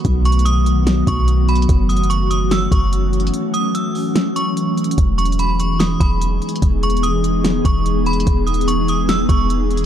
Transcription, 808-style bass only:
\new Staff \with { instrumentName = "808-style bass" } { \clef bass \time 4/4 \key e \major \tempo 4 = 146 b,,2~ b,,8 b,,4. | fis,,2~ fis,,8 fis,,4. | r1 | e,,2~ e,,8 e,,4 r8 |
e,,2~ e,,8 e,,4. | e,,2~ e,,8 e,,4. | }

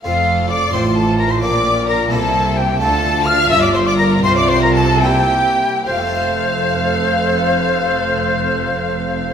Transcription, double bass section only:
\new Staff \with { instrumentName = "Double bass section" } { \clef bass \time 6/8 \key f \major \tempo 4. = 79 f,,4. a,,4. | bes,,4. c,4. | d,4. g,,4. | c,2~ c,8 r8 |
f,,2.~ | f,,2. | }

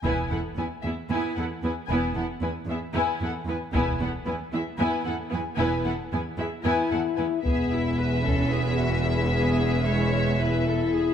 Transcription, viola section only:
\new Staff \with { instrumentName = "Viola section" } { \time 7/8 \key e \major \tempo 4 = 113 <b e'>8 <b e'>8 <b e'>8 <b e'>8 <b e'>8 <b e'>8 <b e'>8 | <b e'>8 <b e'>8 <b e'>8 <b e'>8 <b e'>8 <b e'>8 <b e'>8 | <b e'>8 <b e'>8 <b e'>8 <b e'>8 <b e'>8 <b e'>8 <b e'>8 | <b e'>8 <b e'>8 <b e'>8 <b e'>8 <b e'>8 <b e'>8 <b e'>8 |
gis'8 e'8 b'8 a'8 gis'8 fis'8 e'8 | gis'4 cis''4 b'8 a'8 gis'8 | }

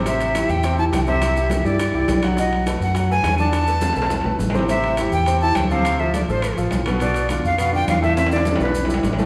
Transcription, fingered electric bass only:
\new Staff \with { instrumentName = "Fingered electric bass" } { \clef bass \time 4/4 \key a \minor \tempo 4 = 207 a,,4. e,4. c,4~ | c,4. g,4 c,8 b,,4~ | b,,4. fis,4. e,4~ | e,4. b,,4 b,,8 a,,4~ |
a,,4. e,4. d,4~ | d,4. a,,4 a,,8 b,,4~ | b,,4. f,4. e,4~ | e,4. b,,4. a,,4 | }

